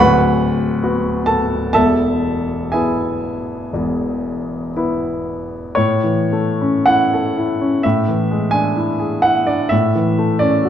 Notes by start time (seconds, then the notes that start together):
Already playing: B5
0.00 D1 D2 B4 F#5
0.83 B3 F#4
1.26 A4 A5
1.73 E1 E2 A4 E5 A5
2.72 B3 E4 G#4 E5 G#5
3.73 E1 E2
4.76 B3 E4
5.75 A2 C#5
6.04 E3
6.33 A3
6.61 C#4
6.86 E4 F#5
7.14 A4
7.38 E4
7.61 C#4
7.83 A2 E5
8.08 E3
8.31 G#3
8.51 D4 G#5
8.77 E4
8.99 G#4
9.22 E4 F#5
9.47 D4 D5
9.69 A2 E5
9.95 E3
10.19 A3
10.39 C#4 D5
10.65 F#4